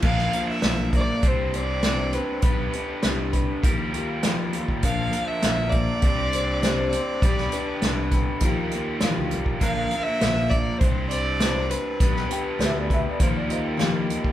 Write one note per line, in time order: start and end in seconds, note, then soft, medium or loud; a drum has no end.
0.02 0.27 A#1 medium
0.02 0.33 A#2 medium
0.02 0.34 D3 medium
0.02 0.34 F3 medium
0.02 0.33 A#3 medium
0.02 0.33 D4 medium
0.02 1.22 F4 medium
0.02 0.32 A#4 medium
0.02 0.46 F5 medium
0.02 kick medium
0.02 crash medium
0.18 snare soft
0.33 0.64 F3 soft
0.33 0.64 A#3 soft
0.33 0.64 D4 medium
0.33 0.63 A#4 soft
0.33 closed hi-hat medium
0.49 0.91 E5 loud
0.62 1.10 B1 medium
0.62 0.94 A#2 medium
0.62 0.95 D3 medium
0.62 0.95 F3 medium
0.62 snare loud
0.62 closed hi-hat medium
0.67 0.94 A#3 medium
0.67 0.93 D4 medium
0.67 0.92 A#4 medium
0.93 1.24 F3 soft
0.93 1.25 A#3 soft
0.93 1.24 D4 soft
0.93 1.24 A#4 soft
0.93 1.29 D5 medium
0.93 kick medium
0.93 closed hi-hat soft
1.23 2.17 C2 medium
1.23 1.54 G3 medium
1.23 1.54 C4 soft
1.23 1.55 D4 soft
1.23 2.42 G4 medium
1.23 1.54 C5 medium
1.23 kick loud
1.23 closed hi-hat medium
1.28 1.56 C5 medium
1.54 1.85 D4 soft
1.54 1.85 C5 soft
1.54 2.15 D5 medium
1.54 closed hi-hat medium
1.58 1.85 C4 soft
1.83 2.14 C3 medium
1.83 2.15 G3 medium
1.83 2.15 C4 medium
1.83 2.14 D4 medium
1.83 snare loud
1.83 closed hi-hat medium
1.87 2.13 C5 medium
2.13 2.43 C4 soft
2.13 2.42 D4 soft
2.13 2.74 B4 medium
2.13 2.44 C5 soft
2.13 closed hi-hat medium
2.42 2.66 B1 medium
2.42 2.73 B3 medium
2.42 2.74 D4 medium
2.42 2.74 G4 medium
2.42 2.72 B4 medium
2.42 kick loud
2.42 closed hi-hat medium
2.73 3.03 D4 soft
2.73 3.04 G4 soft
2.73 3.04 B4 soft
2.73 closed hi-hat medium
3.03 3.51 C2 medium
3.03 3.34 B3 medium
3.03 3.34 D4 medium
3.03 3.33 G4 medium
3.03 3.31 B4 medium
3.03 snare loud
3.03 closed hi-hat medium
3.32 3.62 D4 soft
3.32 3.64 G4 medium
3.32 3.63 B4 medium
3.32 kick medium
3.32 closed hi-hat medium
3.62 4.57 D#2 medium
3.62 4.81 D#3 medium
3.62 3.93 F3 medium
3.62 4.82 G3 medium
3.62 3.93 A#3 medium
3.62 3.94 F4 medium
3.62 3.93 G4 medium
3.62 4.83 A#4 medium
3.62 kick loud
3.62 closed hi-hat medium
3.94 4.23 A#3 soft
3.94 4.24 F4 soft
3.94 4.24 G4 medium
3.94 closed hi-hat soft
4.23 4.53 D#3 medium
4.23 4.54 F3 medium
4.23 4.54 A#3 medium
4.23 4.54 F4 medium
4.23 4.52 G4 medium
4.23 snare loud
4.23 closed hi-hat medium
4.53 4.84 F4 soft
4.53 4.84 G4 soft
4.53 closed hi-hat medium
4.57 4.83 A#3 soft
4.68 kick medium
4.83 5.07 A#1 medium
4.83 5.14 A#2 medium
4.83 5.14 D3 medium
4.83 5.14 F3 medium
4.83 5.13 A#3 medium
4.83 5.12 D4 medium
4.83 6.02 F4 medium
4.83 5.11 A#4 medium
4.83 5.30 F5 medium
4.83 kick medium
4.83 closed hi-hat medium
5.12 5.43 F3 soft
5.12 5.43 A#3 soft
5.12 5.43 D4 medium
5.12 5.43 A#4 soft
5.12 closed hi-hat soft
5.28 5.71 E5 medium
5.42 5.90 A#1 medium
5.42 5.73 A#2 medium
5.42 5.73 D3 medium
5.42 5.74 F3 medium
5.42 5.73 A#3 medium
5.42 5.73 D4 medium
5.42 5.72 A#4 medium
5.42 snare medium
5.42 closed hi-hat medium
5.70 6.03 A#4 medium
5.70 6.89 D5 medium
5.70 kick medium
5.70 closed hi-hat medium
5.74 6.02 F3 soft
5.74 6.03 A#3 soft
5.74 6.03 D4 soft
6.02 6.96 C2 medium
6.02 6.33 G3 medium
6.02 6.33 C4 soft
6.02 6.32 D4 soft
6.02 7.22 G4 medium
6.02 6.31 C5 medium
6.02 kick loud
6.02 closed hi-hat medium
6.32 6.62 C4 soft
6.32 6.63 D4 soft
6.32 6.63 C5 soft
6.32 closed hi-hat medium
6.62 6.93 C3 medium
6.62 6.93 G3 medium
6.62 6.93 C4 medium
6.62 6.93 D4 medium
6.62 6.94 C5 medium
6.62 snare loud
6.62 closed hi-hat medium
6.89 8.07 D5 medium
6.89 closed hi-hat medium
6.95 7.24 C4 soft
6.95 7.23 D4 soft
6.95 7.24 C5 soft
7.22 7.46 B1 medium
7.22 7.53 B3 medium
7.22 7.54 D4 medium
7.22 7.53 G4 medium
7.22 7.52 B4 medium
7.22 kick loud
7.22 closed hi-hat medium
7.38 snare soft
7.52 7.83 D4 soft
7.52 7.83 G4 soft
7.52 7.83 B4 soft
7.52 closed hi-hat medium
7.82 8.29 C2 medium
7.82 8.13 B3 medium
7.82 8.14 D4 medium
7.82 8.13 G4 medium
7.82 8.12 B4 medium
7.82 snare medium
7.82 closed hi-hat medium
8.11 8.43 G4 medium
8.11 8.43 B4 medium
8.11 kick medium
8.11 closed hi-hat medium
8.16 8.42 D4 soft
8.40 8.99 D#2 medium
8.40 9.60 D#3 medium
8.40 8.72 F3 medium
8.40 9.61 G3 medium
8.40 8.72 A#3 medium
8.40 8.72 F4 medium
8.40 kick medium
8.40 closed hi-hat medium
8.45 8.70 G4 medium
8.45 9.61 A#4 medium
8.71 9.01 A#3 soft
8.71 9.02 F4 medium
8.71 9.02 G4 medium
8.71 closed hi-hat medium
9.00 9.32 D#3 medium
9.00 9.32 F3 medium
9.00 9.32 A#3 medium
9.00 9.33 F4 medium
9.00 9.31 G4 medium
9.00 snare loud
9.00 closed hi-hat medium
9.18 9.31 D2 medium
9.31 9.45 C2 medium
9.31 9.62 F4 soft
9.31 9.62 G4 medium
9.31 closed hi-hat medium
9.35 9.61 A#3 soft
9.46 9.60 A#1 medium
9.46 kick medium
9.61 9.85 A#1 medium
9.61 9.92 A#2 medium
9.61 9.92 D3 medium
9.61 9.92 F3 medium
9.61 9.92 A#3 medium
9.61 9.92 D4 medium
9.61 10.79 F4 medium
9.61 9.91 A#4 medium
9.61 10.04 F5 medium
9.61 kick medium
9.61 closed hi-hat medium
9.91 10.22 D4 soft
9.91 10.21 A#4 soft
9.91 closed hi-hat soft
9.95 10.21 F3 soft
9.95 10.20 A#3 soft
10.02 10.51 E5 loud
10.21 10.69 A#1 medium
10.21 10.51 A#2 medium
10.21 10.51 D3 medium
10.21 10.52 F3 medium
10.21 10.51 A#3 medium
10.21 10.51 D4 medium
10.21 10.50 A#4 medium
10.21 snare medium
10.21 closed hi-hat medium
10.50 10.80 A#3 soft
10.50 10.81 D4 soft
10.50 10.81 A#4 soft
10.50 10.80 D5 medium
10.50 kick medium
10.50 closed hi-hat medium
10.54 10.80 F3 soft
10.78 11.74 C2 medium
10.78 11.11 G3 medium
10.78 11.10 C4 soft
10.78 11.08 C5 medium
10.78 kick loud
10.78 closed hi-hat medium
10.83 11.09 D4 medium
10.83 12.00 G4 medium
10.83 11.08 C5 soft
11.08 11.39 C4 soft
11.08 11.39 D4 soft
11.08 11.39 C5 soft
11.08 11.71 D5 medium
11.08 closed hi-hat medium
11.39 11.70 C3 medium
11.39 11.70 G3 medium
11.39 11.70 C4 medium
11.39 11.71 D4 medium
11.39 11.69 C5 medium
11.39 snare loud
11.39 closed hi-hat medium
11.69 12.01 C4 soft
11.69 12.01 D4 soft
11.69 12.30 B4 medium
11.69 12.00 C5 soft
11.69 closed hi-hat medium
12.00 12.23 B1 medium
12.00 12.31 B3 medium
12.00 12.31 D4 medium
12.00 12.29 G4 medium
12.00 12.28 B4 medium
12.00 kick loud
12.00 closed hi-hat medium
12.16 snare soft
12.29 12.58 D4 soft
12.29 12.58 G4 soft
12.29 12.60 B4 medium
12.29 12.60 G5 medium
12.29 closed hi-hat medium
12.59 13.06 D2 medium
12.59 12.89 B3 medium
12.59 12.89 D4 medium
12.59 12.90 G4 medium
12.59 12.87 B4 medium
12.59 snare medium
12.59 closed hi-hat medium
12.65 12.77 E5 medium
12.79 12.91 D5 medium
12.89 13.20 D4 soft
12.89 13.19 G4 medium
12.89 13.19 B4 soft
12.89 kick medium
12.89 closed hi-hat medium
12.94 13.06 E5 medium
13.10 13.22 D5 medium
13.19 14.12 D#2 medium
13.19 14.32 D#3 medium
13.19 13.49 F3 medium
13.19 14.32 G3 medium
13.19 13.50 A#3 medium
13.19 13.48 F4 medium
13.19 13.46 G4 medium
13.19 14.32 A#4 loud
13.19 13.34 C5 medium
13.19 kick loud
13.19 closed hi-hat medium
13.36 13.49 D5 medium
13.47 13.78 A#3 soft
13.47 13.78 F4 medium
13.47 13.78 G4 medium
13.47 14.20 C5 medium
13.47 14.22 D#5 medium
13.47 closed hi-hat soft
13.77 14.08 D#3 medium
13.77 14.09 F3 medium
13.77 14.09 A#3 medium
13.77 14.09 F4 medium
13.77 14.08 G4 medium
13.77 snare medium
13.77 closed hi-hat medium
14.09 14.32 A#3 soft
14.09 14.32 F4 soft
14.09 14.32 G4 soft
14.09 closed hi-hat medium
14.24 kick medium